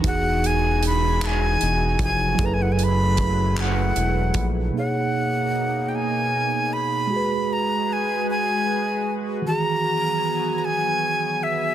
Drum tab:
HH |xxxxxx|xxxxxx|------|------|
CP |---x--|---x--|------|------|
BD |o----o|o-o--o|------|------|

HH |------|
CP |------|
BD |------|